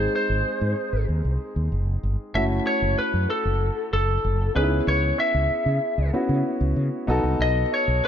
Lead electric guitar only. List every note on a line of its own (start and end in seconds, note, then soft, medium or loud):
0.00 0.12 C5 loud
0.16 1.05 C5 medium
2.35 2.44 E5 loud
2.67 2.96 C#5 medium
2.99 3.30 B4 medium
3.30 3.92 A4 medium
3.93 4.52 A4 medium
4.56 4.89 B4 medium
4.88 5.17 C#5 medium
5.20 6.10 E5 medium
7.42 7.73 D#5 medium
7.74 8.05 C#5 medium